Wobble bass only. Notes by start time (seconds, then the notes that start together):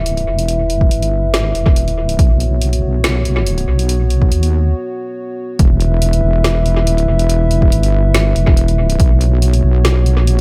Already playing: E1
0.27 E1
0.91 G1
1.55 E1
2.19 B1
2.83 B1
3.68 B1
4.32 D#2
5.59 E1
6.23 E1
6.82 D#1
7.08 E1
7.72 G1
8.36 E1
9.00 B1
9.64 B1
10.23 A#1